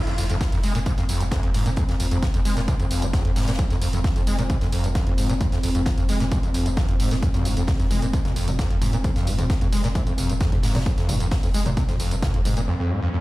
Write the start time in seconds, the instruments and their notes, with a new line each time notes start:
Already playing: ambient pad F3 C4
0.06 sub bass F1, acid bass F2, snare, closed hi-hat, tambourine
0.18 sub bass F1, acid bass F2, closed hi-hat, open hi-hat, tambourine
0.30 sub bass F1, acid bass F2, closed hi-hat, tambourine
0.41 acid bass F2, kick, snare, closed hi-hat, open hi-hat, tambourine
0.52 sub bass F1, acid bass F2, closed hi-hat, tambourine
0.63 sub bass F1, acid bass G#3, closed hi-hat, open hi-hat, tambourine
0.75 sub bass F1, acid bass A#2, closed hi-hat, tambourine
0.86 acid bass C3, kick, closed hi-hat, tambourine
0.97 sub bass F1, acid bass F2, snare, closed hi-hat, tambourine
1.09 sub bass F1, acid bass F2, closed hi-hat, open hi-hat, tambourine
1.20 sub bass F1, acid bass G#2, closed hi-hat, tambourine
1.31 acid bass F2, kick, snare, closed hi-hat, tambourine
1.43 sub bass F1, acid bass F2, closed hi-hat
1.54 sub bass F1, acid bass G#2, closed hi-hat, open hi-hat, tambourine
1.66 sub bass F1, acid bass A#2, closed hi-hat, tambourine
1.76 acid bass F2, kick, closed hi-hat, tambourine
1.89 sub bass F1, acid bass F2, snare, closed hi-hat, tambourine
2.00 sub bass F1, acid bass F2, closed hi-hat, open hi-hat, tambourine
2.11 sub bass F1, acid bass F2, closed hi-hat, tambourine
2.23 acid bass F2, kick, snare, closed hi-hat, tambourine
2.34 sub bass F1, acid bass F2, closed hi-hat, tambourine
2.45 sub bass F1, acid bass G#3, closed hi-hat, open hi-hat, tambourine
2.57 sub bass F1, acid bass A#2, snare, closed hi-hat, tambourine
2.68 acid bass C3, kick, closed hi-hat, tambourine
2.79 sub bass F1, acid bass F2, closed hi-hat, tambourine
2.91 sub bass F1, acid bass F2, closed hi-hat, open hi-hat, tambourine
3.02 sub bass F1, acid bass G#2, closed hi-hat, tambourine
3.13 acid bass F2, kick, snare, closed hi-hat, tambourine
3.25 sub bass F1, acid bass F2, closed hi-hat
3.36 sub bass F1, acid bass G#2, snare, open hi-hat, tambourine
3.42 snare, open hi-hat
3.47 sub bass F1, acid bass A#2, snare, closed hi-hat, open hi-hat, tambourine
3.53 snare, open hi-hat
3.59 acid bass F2, kick, closed hi-hat, tambourine
3.70 sub bass F1, acid bass F2, snare, closed hi-hat, tambourine
3.82 sub bass F1, acid bass F2, closed hi-hat, open hi-hat, tambourine
3.93 sub bass F1, acid bass F2, closed hi-hat, tambourine
4.04 acid bass F2, kick, snare, closed hi-hat, open hi-hat, tambourine
4.16 sub bass F1, acid bass F2, closed hi-hat, tambourine
4.27 sub bass F1, acid bass G#3, closed hi-hat, open hi-hat, tambourine
4.38 sub bass F1, acid bass A#2, closed hi-hat, tambourine
4.50 acid bass C3, kick, closed hi-hat, tambourine
4.61 sub bass F1, acid bass F2, snare, closed hi-hat, tambourine
4.72 sub bass F1, acid bass F2, closed hi-hat, open hi-hat, tambourine
4.84 sub bass F1, acid bass G#2, closed hi-hat, tambourine
4.95 acid bass F2, kick, snare, closed hi-hat, tambourine
5.07 sub bass F1, acid bass F2, closed hi-hat
5.18 sub bass F1, acid bass G#2, closed hi-hat, open hi-hat, tambourine
5.30 sub bass F1, acid bass A#2, closed hi-hat, tambourine
5.41 acid bass F2, kick, closed hi-hat, tambourine
5.52 sub bass F1, acid bass F2, snare, closed hi-hat, tambourine
5.63 sub bass F1, acid bass F2, closed hi-hat, open hi-hat, tambourine
5.75 sub bass F1, acid bass F2, closed hi-hat, tambourine
5.86 acid bass F2, kick, snare, closed hi-hat, tambourine
5.98 sub bass F1, acid bass F2, closed hi-hat, tambourine
6.08 sub bass F1, acid bass G#3, closed hi-hat, open hi-hat, tambourine
6.20 sub bass F1, acid bass A#2, snare, closed hi-hat, tambourine
6.32 acid bass C3, kick, closed hi-hat, tambourine
6.43 sub bass F1, acid bass F2, closed hi-hat, tambourine
6.54 sub bass F1, acid bass F2, closed hi-hat, open hi-hat, tambourine
6.66 sub bass F1, acid bass G#2, closed hi-hat, tambourine
6.77 acid bass F2, kick, snare, closed hi-hat, tambourine
6.89 sub bass F1, acid bass F2, closed hi-hat
7.00 sub bass F1, acid bass G#2, closed hi-hat, open hi-hat, tambourine
7.11 sub bass F1, acid bass A#2, snare, closed hi-hat, tambourine
7.23 acid bass F2, kick, closed hi-hat, tambourine
7.34 sub bass F1, acid bass F2, snare, closed hi-hat, mid tom, tambourine
7.45 sub bass F1, acid bass G#2, closed hi-hat, open hi-hat, tambourine
7.57 sub bass F1, acid bass F2, closed hi-hat, tambourine
7.67 acid bass F2, kick, snare, closed hi-hat, open hi-hat, mid tom, tambourine
7.80 sub bass F1, acid bass F2, closed hi-hat, tambourine
7.91 sub bass F1, acid bass G#3, closed hi-hat, open hi-hat, mid tom, tambourine
8.02 sub bass F1, acid bass A#2, closed hi-hat, tambourine
8.13 acid bass C3, kick, closed hi-hat, tambourine
8.25 sub bass F1, acid bass F2, snare, closed hi-hat, mid tom, tambourine
8.36 sub bass F1, acid bass F2, closed hi-hat, open hi-hat, tambourine
8.48 sub bass F1, acid bass G#2, closed hi-hat, mid tom, tambourine
8.59 acid bass F2, kick, snare, closed hi-hat, tambourine
8.70 sub bass F1, acid bass F2, closed hi-hat
8.82 sub bass F1, acid bass G#2, closed hi-hat, open hi-hat, mid tom, tambourine
8.93 sub bass F1, acid bass A#2, closed hi-hat, tambourine
9.04 acid bass F2, kick, closed hi-hat, mid tom, tambourine
9.16 sub bass F1, acid bass F2, snare, closed hi-hat, tambourine
9.27 sub bass F1, acid bass G#2, closed hi-hat, open hi-hat, tambourine
9.39 sub bass F1, acid bass F2, closed hi-hat, mid tom, tambourine
9.50 acid bass F2, kick, snare, closed hi-hat, tambourine
9.61 sub bass F1, acid bass F2, closed hi-hat, mid tom, tambourine
9.72 sub bass F1, acid bass G#3, closed hi-hat, open hi-hat, tambourine
9.84 sub bass F1, acid bass A#2, snare, closed hi-hat, tambourine
9.95 acid bass C3, kick, closed hi-hat, mid tom, tambourine
10.07 sub bass F1, acid bass F2, closed hi-hat, tambourine
10.18 sub bass F1, acid bass F2, closed hi-hat, open hi-hat, mid tom, tambourine
10.29 sub bass F1, acid bass G#2, closed hi-hat, tambourine
10.40 acid bass F2, kick, snare, closed hi-hat, tambourine
10.52 sub bass F1, acid bass F2, closed hi-hat, mid tom
10.63 sub bass F1, acid bass G#2, snare, open hi-hat, tambourine
10.69 snare, open hi-hat
10.75 sub bass F1, acid bass A#2, snare, closed hi-hat, open hi-hat, mid tom, tambourine
10.80 snare, open hi-hat
10.86 acid bass F2, kick, closed hi-hat, tambourine, riser
10.98 sub bass F1, acid bass F2, snare, closed hi-hat, tambourine
11.09 sub bass F1, acid bass G#2, closed hi-hat, open hi-hat, mid tom, tambourine
11.20 sub bass F1, acid bass F2, closed hi-hat, tambourine
11.31 acid bass F2, kick, snare, closed hi-hat, open hi-hat, mid tom, tambourine
11.43 sub bass F1, acid bass F2, closed hi-hat, tambourine
11.54 sub bass F1, acid bass G#3, closed hi-hat, open hi-hat, tambourine
11.66 sub bass F1, acid bass A#2, closed hi-hat, mid tom, tambourine
11.77 acid bass C3, kick, closed hi-hat, tambourine
11.88 sub bass F1, acid bass F2, snare, closed hi-hat, mid tom, tambourine
11.99 sub bass F1, acid bass F2, closed hi-hat, open hi-hat, tambourine
12.11 sub bass F1, acid bass G#2, closed hi-hat, tambourine
12.23 acid bass F2, kick, snare, closed hi-hat, mid tom, tambourine
12.34 sub bass F1, acid bass F2, closed hi-hat
12.45 sub bass F1, acid bass G#2, closed hi-hat, open hi-hat, mid tom, tambourine
12.57 sub bass F1, acid bass A#2, closed hi-hat, tambourine
12.68 acid bass F2
12.80 acid bass F2
12.91 acid bass G#2
13.02 acid bass F2
13.13 acid bass F2